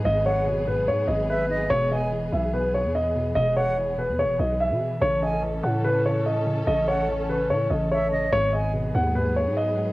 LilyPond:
<<
  \new Staff \with { instrumentName = "Flute" } { \time 4/4 \key gis \phrygian \tempo 4 = 145 r8 fis''8 r2 e''8 dis''8 | r8 gis''8 r2. | r8 fis''8 r2. | r8 gis''8 r2. |
r8 fis''8 r2 e''8 dis''8 | r8 gis''8 r2. | }
  \new Staff \with { instrumentName = "Grand piano" } { \time 4/4 \key gis \phrygian dis''8 cis''4 b'8 cis''8 dis''8 b'4 | cis''8 dis''4 e''8 b'8 cis''8 dis''4 | dis''8 cis''4 b'8 cis''8 dis''8 e''4 | cis''8 dis''4 fis''8 b'8 cis''8 dis''4 |
dis''8 cis''4 b'8 cis''8 dis''8 cis''4 | cis''8 dis''4 fis''8 b'8 cis''8 dis''4 | }
  \new Staff \with { instrumentName = "String section" } { \time 4/4 \key gis \phrygian << { <b gis'>1~ | <b gis'>1~ | <b gis'>1 | <cis' a'>1~ |
<cis' a'>1 | <b gis'>1 | } \\ { fis1 | e1~ | e1~ | e1~ |
e1 | fis1 | } >> }
  \new Staff \with { instrumentName = "Synth pluck" } { \clef bass \time 4/4 \key gis \phrygian gis,8 gis,8 b,8 gis,8 gis,8 gis,4 gis,8 | b,8 b,8 e8 b,8 b,8 b,4 b,8 | b,8 b,8 e8 b,8 b,8 b,4 b,8 | cis8 cis8 e8 cis8 cis8 cis4 cis8 |
cis8 cis8 e8 cis8 cis8 cis4 cis8 | gis,8 gis,8 b,8 gis,8 gis,8 gis,4 gis,8 | }
  \new Staff \with { instrumentName = "808-style bass" } { \clef bass \time 4/4 \key gis \phrygian gis,,2 gis,8 gis,,4. | e,,4. b,,4~ b,,16 e,4~ e,16 | e,,4.~ e,,16 e,16. e,,16. b,,8. b,16 r8 | a,,4. a,2~ a,8 |
a,,2 a,8 a,,4. | gis,,4. dis,4~ dis,16 gis,4~ gis,16 | }
>>